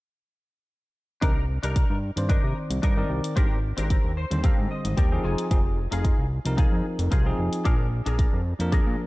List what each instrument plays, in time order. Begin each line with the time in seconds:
1.21 analog synth bass C2, tine electric piano D#3 C4 D4 A#4, clean electric guitar D4 D#4 A#4, kick, closed hi-hat
1.63 analog synth bass C2, clean electric guitar D4 D#4 A#4, closed hi-hat
1.76 kick, closed hi-hat
1.90 analog synth bass G2
2.16 analog synth bass G2, tine electric piano D#3 C4 C5 D5, closed hi-hat
2.29 clean electric guitar D4 D#4 A#4, kick, closed hi-hat
2.43 analog synth bass C3
2.70 analog synth bass C2, closed hi-hat
2.82 analog synth bass G2, clean electric guitar D4 D#4 A#4, kick, closed hi-hat
2.97 tine electric piano D#3 C4 A#4 D5
3.09 analog synth bass C2
3.24 closed hi-hat
3.36 analog synth bass G#1, tine electric piano G3 C4 D4 A#4, clean electric guitar C4 D4 G4 A#4, kick, closed hi-hat
3.77 analog synth bass G#1, clean electric guitar C4 D4 G4 A#4, closed hi-hat
3.90 kick, closed hi-hat
4.04 analog synth bass D#2
4.17 clean electric guitar C5
4.31 analog synth bass D#2, tine electric piano D3 G3 C4 C5, closed hi-hat
4.43 clean electric guitar C4 D4 G4 A#4 F5, kick, closed hi-hat
4.58 analog synth bass G#2
4.71 clean electric guitar D#5
4.85 analog synth bass G#1, closed hi-hat
4.97 analog synth bass D#2, clean electric guitar C4 D4 G4 A#4 G5, kick, closed hi-hat
5.11 tine electric piano F3 C4 D#4 G#4
5.24 analog synth bass F1, clean electric guitar D#4 F4 G#4 G#5
5.38 closed hi-hat
5.51 analog synth bass F1, tine electric piano F3 C4 D#4 G#4, kick, closed hi-hat
5.91 analog synth bass F1, clean electric guitar D#4 F4 G#4, closed hi-hat
6.04 kick, closed hi-hat
6.19 analog synth bass C2
6.45 analog synth bass C2, tine electric piano F3 C4 D#4 A#4, closed hi-hat
6.57 clean electric guitar D#4 F4 G#4, kick, closed hi-hat
6.72 analog synth bass F2
6.99 analog synth bass F1, closed hi-hat
7.11 analog synth bass C2, clean electric guitar D#4 F4 G#4, kick, closed hi-hat
7.26 tine electric piano F3 C4 D#4 G#4
7.38 analog synth bass F1
7.53 closed hi-hat
7.65 analog synth bass A#1, tine electric piano F3 A#3 D4 G#4, clean electric guitar D4 G#4 A#4, kick, closed hi-hat
8.06 analog synth bass A#1, clean electric guitar D4 G#4 A#4, closed hi-hat
8.19 kick, closed hi-hat
8.33 analog synth bass F2
8.59 analog synth bass F2, tine electric piano F3 A#3 D4 A#4, closed hi-hat
8.72 clean electric guitar D4 G#4 A#4, kick, closed hi-hat
8.87 analog synth bass A#2